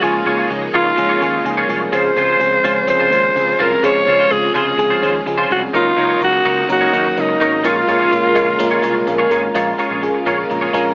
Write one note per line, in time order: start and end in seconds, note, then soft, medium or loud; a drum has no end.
0.00 0.20 C#2 loud
0.00 5.70 C#3 medium
0.00 0.02 F3 loud
0.00 0.17 F3 loud
0.00 0.03 G#3 medium
0.00 1.89 G#3 medium
0.00 0.17 G#3 medium
0.00 0.03 A#3 medium
0.00 1.89 A#3 medium
0.00 0.17 A#3 medium
0.00 0.03 C#4 medium
0.00 0.17 C#4 medium
0.00 1.91 D#4 medium
0.00 0.19 F4 medium
0.00 0.48 F4 medium
0.00 0.03 G#4 loud
0.00 0.13 G#4 medium
0.00 0.17 G#4 loud
0.00 0.12 C#5 medium
0.14 muted clean electric guitar stroke medium
0.25 0.43 C#2 loud
0.25 0.40 F3 medium
0.25 0.40 G#3 medium
0.25 0.41 A#3 medium
0.25 0.41 C#4 medium
0.25 0.37 F4 medium
0.25 0.41 F4 medium
0.25 0.37 G#4 medium
0.25 0.36 C#5 medium
0.37 0.49 F4 medium
0.37 0.49 G#4 medium
0.37 0.50 C#5 medium
0.49 0.67 C#2 loud
0.49 0.64 F3 medium
0.49 0.65 G#3 medium
0.49 0.65 A#3 medium
0.49 0.65 C#4 medium
0.49 0.65 G#4 medium
0.49 muted clean electric guitar stroke soft
0.62 muted clean electric guitar stroke soft
0.73 0.91 C#2 loud
0.73 0.88 F3 medium
0.73 0.88 G#3 medium
0.73 0.88 A#3 medium
0.73 0.89 C#4 medium
0.73 0.91 F4 medium
0.73 1.66 F4 loud
0.73 0.85 G#4 medium
0.73 0.89 A#4 medium
0.73 0.85 C#5 medium
0.86 muted clean electric guitar stroke soft
0.97 1.15 C#2 loud
0.97 1.12 F3 loud
0.97 1.12 G#3 medium
0.97 1.12 A#3 medium
0.97 1.12 C#4 medium
0.97 1.12 G#4 loud
0.97 muted clean electric guitar stroke soft
1.09 1.20 F4 medium
1.09 1.21 G#4 medium
1.09 1.21 C#5 medium
1.20 1.39 D#2 medium
1.20 1.35 F3 medium
1.20 1.36 G#3 medium
1.20 1.36 A#3 medium
1.20 1.36 C#4 medium
1.20 1.35 F4 medium
1.20 1.36 G#4 medium
1.20 1.33 G#4 medium
1.20 1.32 C#5 medium
1.33 muted clean electric guitar stroke medium
1.44 1.62 C#2 loud
1.44 1.59 F3 medium
1.44 1.59 G#3 medium
1.44 1.60 A#3 medium
1.44 1.60 C#4 medium
1.44 1.60 G#4 loud
1.44 muted clean electric guitar stroke soft
1.57 1.68 F4 medium
1.57 1.68 G#4 medium
1.57 1.69 C#5 medium
1.68 1.86 C2 medium
1.68 1.83 F3 medium
1.68 1.83 G#3 medium
1.68 1.83 A#3 medium
1.68 1.84 C#4 medium
1.68 1.82 F4 medium
1.68 1.84 G#4 medium
1.68 1.80 G#4 medium
1.68 1.80 C#5 medium
1.81 muted clean electric guitar stroke soft
1.92 2.10 C#2 loud
1.92 5.69 C3 medium
1.92 2.07 F3 loud
1.92 5.70 G#3 medium
1.92 2.07 G#3 medium
1.92 2.07 C4 medium
1.92 2.09 C#4 medium
1.92 2.07 C#4 medium
1.92 5.70 F4 medium
1.92 2.05 F4 medium
1.92 2.07 G#4 loud
1.92 2.03 C5 loud
1.92 2.85 C5 loud
2.05 muted clean electric guitar stroke soft
2.16 2.34 C#2 loud
2.16 2.31 F3 medium
2.16 2.31 G#3 medium
2.16 2.31 C4 medium
2.16 2.29 C#4 medium
2.16 2.31 C#4 medium
2.16 2.28 F4 medium
2.16 2.31 G#4 medium
2.16 2.27 C5 medium
2.29 2.40 C#4 medium
2.29 2.40 F4 medium
2.29 2.40 C5 medium
2.40 2.58 C#2 medium
2.40 2.54 F3 medium
2.40 2.55 G#3 medium
2.40 2.55 C4 medium
2.40 2.55 C#4 medium
2.40 2.55 G#4 medium
2.40 muted clean electric guitar stroke soft
2.52 muted clean electric guitar stroke medium
2.64 2.81 C#2 loud
2.64 2.78 F3 medium
2.64 2.79 G#3 medium
2.64 2.79 C4 medium
2.64 2.81 C#4 medium
2.64 2.79 C#4 medium
2.64 2.76 F4 medium
2.64 2.79 G#4 loud
2.64 2.75 C5 medium
2.76 muted clean electric guitar stroke soft
2.87 3.11 C#2 loud
2.87 3.02 F3 loud
2.87 3.02 G#3 medium
2.87 3.02 C4 medium
2.87 3.02 C#4 medium
2.87 3.03 G#4 loud
2.87 3.63 C5 loud
2.87 muted clean electric guitar stroke soft
3.00 3.10 C#4 medium
3.00 3.11 F4 medium
3.00 3.11 C5 medium
3.11 3.29 D#2 medium
3.11 3.26 F3 medium
3.11 3.26 G#3 medium
3.11 3.26 C4 medium
3.11 3.25 C#4 medium
3.11 3.26 C#4 medium
3.11 3.23 F4 medium
3.11 3.27 G#4 medium
3.11 3.22 C5 medium
3.23 muted clean electric guitar stroke soft
3.35 3.53 C#2 loud
3.35 3.50 F3 medium
3.35 3.50 G#3 medium
3.35 3.50 C4 medium
3.35 3.51 C#4 medium
3.35 3.51 G#4 medium
3.35 muted clean electric guitar stroke soft
3.47 muted clean electric guitar stroke soft
3.59 3.77 C2 medium
3.59 3.74 F3 medium
3.59 3.74 G#3 medium
3.59 3.74 C4 medium
3.59 3.76 C#4 medium
3.59 3.74 C#4 medium
3.59 3.71 F4 medium
3.59 3.74 F4 medium
3.59 3.86 A#4 loud
3.59 3.70 C5 medium
3.71 muted clean electric guitar stroke soft
3.83 4.00 C#2 loud
3.83 3.98 F3 medium
3.83 3.98 G#3 medium
3.83 3.98 C4 medium
3.83 4.00 C#4 medium
3.83 3.98 C#4 medium
3.83 3.95 F4 medium
3.83 3.98 G#4 loud
3.83 3.94 C5 medium
3.83 4.33 C#5 loud
3.95 muted clean electric guitar stroke medium
4.06 4.24 C#2 loud
4.06 4.21 F3 medium
4.06 4.21 G#3 medium
4.06 4.21 C4 medium
4.06 4.21 C#4 medium
4.06 4.19 C#4 medium
4.06 4.22 F4 medium
4.06 4.18 F4 medium
4.06 4.18 C5 medium
4.19 4.30 C#4 medium
4.19 4.30 F4 medium
4.19 4.31 C5 medium
4.30 4.48 C#2 medium
4.30 4.45 F3 medium
4.30 4.45 G#3 medium
4.30 4.45 C4 medium
4.30 4.45 C#4 medium
4.30 4.45 G#4 medium
4.30 4.55 G#4 loud
4.30 muted clean electric guitar stroke soft
4.43 muted clean electric guitar stroke soft
4.54 4.72 C#2 loud
4.54 4.69 F3 medium
4.54 4.69 G#3 medium
4.54 4.69 C4 medium
4.54 4.71 C#4 medium
4.54 4.69 C#4 medium
4.54 4.66 F4 loud
4.54 4.69 G#4 medium
4.54 5.23 G#4 medium
4.54 4.65 C5 loud
4.66 muted clean electric guitar stroke soft
4.78 4.96 C#2 medium
4.78 4.93 F3 loud
4.78 4.93 G#3 medium
4.78 4.93 C4 medium
4.78 4.93 C#4 medium
4.78 4.93 G#4 loud
4.78 muted clean electric guitar stroke soft
4.90 5.01 C#4 medium
4.90 5.01 F4 medium
4.90 5.02 C5 medium
5.02 5.19 D#2 loud
5.02 5.17 F3 medium
5.02 5.17 G#3 medium
5.02 5.17 C4 medium
5.02 5.15 C#4 medium
5.02 5.17 C#4 medium
5.02 5.13 F4 medium
5.02 5.17 G#4 medium
5.02 5.13 C5 medium
5.14 muted clean electric guitar stroke soft
5.26 5.43 C#2 loud
5.26 5.41 F3 medium
5.26 5.41 G#3 medium
5.26 5.41 C4 medium
5.26 5.41 C#4 medium
5.26 5.41 G#4 loud
5.26 muted clean electric guitar stroke soft
5.38 5.48 C#4 medium
5.38 5.49 F4 medium
5.38 5.49 C5 loud
5.49 5.67 C2 medium
5.49 5.64 F3 medium
5.49 5.64 G#3 medium
5.49 5.65 C4 medium
5.49 5.63 C#4 medium
5.49 5.65 C#4 medium
5.49 5.61 F4 medium
5.49 5.62 F#4 loud
5.49 5.65 G#4 medium
5.49 5.60 C5 medium
5.62 muted clean electric guitar stroke soft
5.73 5.91 C#2 loud
5.73 7.62 C#3 medium
5.73 7.62 F#3 medium
5.73 5.88 F#3 loud
5.73 9.51 A#3 medium
5.73 5.88 A#3 medium
5.73 5.89 C#4 medium
5.73 5.90 D#4 medium
5.73 7.62 D#4 medium
5.73 5.89 D#4 medium
5.73 6.19 F4 loud
5.73 5.85 A#4 medium
5.73 5.89 A#4 loud
5.73 5.84 C#5 medium
5.85 muted clean electric guitar stroke soft
5.96 6.14 C#2 loud
5.96 6.12 F#3 medium
5.96 6.12 A#3 medium
5.96 6.12 C#4 medium
5.96 6.09 D#4 medium
5.96 6.12 D#4 medium
5.96 6.08 A#4 medium
5.96 6.12 A#4 medium
5.96 6.08 C#5 medium
6.09 6.20 D#4 medium
6.09 6.21 A#4 medium
6.09 6.21 C#5 medium
6.20 6.38 C#2 loud
6.20 6.35 F#3 medium
6.20 6.36 A#3 medium
6.20 6.36 C#4 medium
6.20 6.36 D#4 medium
6.20 6.67 F#4 loud
6.20 6.36 A#4 medium
6.20 muted clean electric guitar stroke soft
6.33 muted clean electric guitar stroke medium
6.44 6.62 C#2 loud
6.44 6.59 F#3 medium
6.44 6.59 A#3 medium
6.44 6.59 C#4 medium
6.44 6.62 D#4 medium
6.44 6.60 D#4 medium
6.44 6.60 A#4 medium
6.44 6.57 A#4 medium
6.44 6.56 C#5 loud
6.57 muted clean electric guitar stroke soft
6.68 6.86 C#2 medium
6.68 6.83 F#3 medium
6.68 6.83 A#3 medium
6.68 6.83 C#4 medium
6.68 6.84 D#4 medium
6.68 7.21 F#4 loud
6.68 6.84 A#4 loud
6.68 muted clean electric guitar stroke soft
6.81 6.92 D#4 medium
6.81 6.92 A#4 medium
6.81 6.93 C#5 medium
6.92 7.10 D#2 medium
6.92 7.07 F#3 medium
6.92 7.07 A#3 medium
6.92 7.07 C#4 medium
6.92 7.06 D#4 medium
6.92 7.07 D#4 medium
6.92 7.05 A#4 medium
6.92 7.08 A#4 medium
6.92 7.04 C#5 medium
7.05 muted clean electric guitar stroke medium
7.16 7.34 C#2 loud
7.16 7.31 F#3 medium
7.16 7.31 A#3 medium
7.16 7.31 C#4 medium
7.16 7.32 D#4 medium
7.16 7.68 D#4 loud
7.16 7.32 A#4 medium
7.16 muted clean electric guitar stroke soft
7.29 muted clean electric guitar stroke medium
7.40 7.64 G#1 loud
7.40 7.55 F#3 medium
7.40 7.55 A#3 medium
7.40 7.55 C#4 medium
7.40 7.57 D#4 medium
7.40 7.55 D#4 medium
7.40 7.52 A#4 medium
7.40 7.55 A#4 medium
7.40 7.51 C#5 medium
7.53 muted clean electric guitar stroke medium
7.63 7.81 A#1 loud
7.63 9.53 C#3 medium
7.63 7.78 G#3 medium
7.63 9.53 G#3 medium
7.63 7.78 A#3 medium
7.63 7.79 C#4 medium
7.63 7.81 F4 medium
7.63 9.53 F4 medium
7.63 7.79 F4 medium
7.63 9.32 F4 loud
7.63 7.76 G#4 medium
7.63 7.79 A#4 loud
7.63 7.75 C#5 medium
7.76 muted clean electric guitar stroke soft
7.87 8.05 A#1 loud
7.87 8.02 G#3 medium
7.87 8.02 A#3 medium
7.87 8.02 C#4 medium
7.87 8.00 F4 medium
7.87 8.03 F4 medium
7.87 8.00 G#4 medium
7.87 8.03 A#4 medium
7.87 7.99 C#5 medium
8.00 8.10 F4 medium
8.00 8.11 G#4 medium
8.00 8.11 C#5 medium
8.11 8.29 A#1 medium
8.11 8.26 G#3 medium
8.11 8.26 A#3 medium
8.11 8.26 C#4 medium
8.11 8.27 F4 medium
8.11 8.27 A#4 medium
8.11 muted clean electric guitar stroke soft
8.24 muted clean electric guitar stroke soft
8.35 8.53 A#1 medium
8.35 8.50 G#3 medium
8.35 8.50 A#3 medium
8.35 8.50 C#4 medium
8.35 8.52 F4 medium
8.35 8.50 F4 medium
8.35 8.47 G#4 medium
8.35 8.50 A#4 loud
8.35 8.46 C#5 medium
8.35 8.58 D#5 medium
8.47 muted clean electric guitar stroke soft
8.59 8.77 A#1 loud
8.59 8.74 G#3 loud
8.59 8.74 A#3 loud
8.59 8.74 C#4 loud
8.59 8.74 F4 loud
8.59 8.74 A#4 loud
8.59 8.81 F5 medium
8.59 muted clean electric guitar stroke soft
8.71 8.82 F4 medium
8.71 8.82 G#4 medium
8.71 8.83 C#5 medium
8.82 9.01 C2 medium
8.82 8.97 G#3 loud
8.82 8.97 A#3 medium
8.82 8.98 C#4 medium
8.82 8.96 F4 medium
8.82 8.98 F4 medium
8.82 8.95 G#4 medium
8.82 8.98 A#4 loud
8.82 8.94 C#5 medium
8.82 9.05 F5 medium
8.95 muted clean electric guitar stroke soft
9.06 9.25 A#1 loud
9.06 9.21 G#3 medium
9.06 9.22 A#3 medium
9.06 9.22 C#4 medium
9.06 9.22 F4 medium
9.06 9.22 A#4 medium
9.06 9.29 G#5 medium
9.06 muted clean electric guitar stroke soft
9.18 9.30 F4 medium
9.18 9.30 G#4 medium
9.18 9.31 C#5 medium
9.30 9.48 G#1 medium
9.30 9.45 G#3 medium
9.30 9.45 A#3 medium
9.30 9.45 C#4 medium
9.30 9.44 F4 medium
9.30 9.45 F4 medium
9.30 9.43 G#4 medium
9.30 9.46 A#4 loud
9.30 9.42 C#5 medium
9.30 9.53 A#5 medium
9.43 muted clean electric guitar stroke medium
9.54 9.72 A#1 loud
9.54 10.94 C#3 medium
9.54 9.69 G#3 loud
9.54 10.94 G#3 medium
9.54 10.94 A#3 medium
9.54 9.69 C#4 loud
9.54 10.94 F4 medium
9.54 9.72 F4 medium
9.54 9.69 F4 loud
9.54 9.66 G#4 medium
9.54 9.70 A#4 loud
9.54 9.65 C#5 medium
9.66 muted clean electric guitar stroke soft
9.78 9.93 G#3 medium
9.78 9.93 C#4 medium
9.78 9.90 F4 medium
9.78 9.93 F4 medium
9.78 9.89 G#4 medium
9.78 9.93 A#4 medium
9.78 9.89 C#5 medium
9.90 10.08 A#1 medium
9.90 10.01 F4 medium
9.90 10.02 G#4 medium
9.90 10.02 C#5 medium
10.02 10.17 G#3 medium
10.02 10.17 C#4 medium
10.02 10.17 F4 medium
10.02 10.17 G#4 medium
10.02 muted clean electric guitar stroke soft
10.15 muted clean electric guitar stroke soft
10.26 10.43 A#1 medium
10.26 10.40 G#3 medium
10.26 10.41 C#4 medium
10.26 10.43 F4 medium
10.26 10.41 F4 medium
10.26 10.38 G#4 medium
10.26 10.41 A#4 medium
10.26 10.37 C#5 medium
10.38 muted clean electric guitar stroke soft
10.49 10.67 A#1 medium
10.49 10.64 G#3 medium
10.49 10.64 C#4 medium
10.49 10.65 F4 medium
10.49 10.65 A#4 loud
10.49 muted clean electric guitar stroke soft
10.61 10.72 F4 medium
10.61 10.73 G#4 medium
10.61 10.73 C#5 medium
10.73 10.91 A#1 medium
10.73 10.88 G#3 loud
10.73 10.88 C#4 loud
10.73 10.87 F4 medium
10.73 10.88 F4 loud
10.73 10.85 G#4 medium
10.73 10.89 A#4 loud
10.73 10.84 C#5 medium
10.85 muted clean electric guitar stroke soft